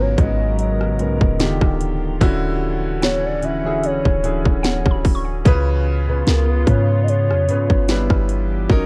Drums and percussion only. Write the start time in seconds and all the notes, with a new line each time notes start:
0.18 kick, closed hi-hat
0.59 closed hi-hat
0.81 cross-stick
0.99 closed hi-hat
1.21 kick
1.40 snare, closed hi-hat
1.61 kick, cross-stick
1.81 closed hi-hat
2.21 kick, closed hi-hat
3.02 snare, closed hi-hat
3.42 closed hi-hat
3.84 closed hi-hat
4.05 kick, cross-stick
4.24 closed hi-hat
4.46 kick
4.64 snare, closed hi-hat
4.86 kick, cross-stick
5.05 kick, open hi-hat
5.45 kick, closed hi-hat
6.27 snare, closed hi-hat
6.67 kick, closed hi-hat
7.08 closed hi-hat
7.30 cross-stick
7.49 closed hi-hat
7.70 kick
7.89 snare, closed hi-hat
8.10 kick, cross-stick
8.29 closed hi-hat
8.70 kick